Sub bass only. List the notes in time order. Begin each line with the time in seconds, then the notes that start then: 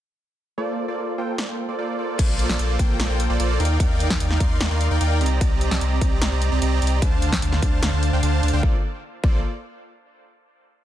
2.19 A#1
2.49 A#1
2.59 A#1
2.79 A#1
2.99 A#1
3.10 A#1
3.30 A#1
3.40 A#1
3.60 D#2
3.80 D#2
4.10 D#2
4.20 D#2
4.40 D#2
4.61 D#2
4.71 D#2
4.91 D#2
5.01 D#2
5.21 C2
5.41 C2
5.71 C2
5.81 C2
6.02 C2
6.22 C2
6.32 C2
6.52 C2
6.62 C2
6.82 C2
7.02 D2
7.32 D2
7.42 D2
7.62 D2
7.83 D2
7.93 D2
8.13 D2
8.23 D2
8.43 D2
8.53 D2
8.63 A#1
9.24 A#1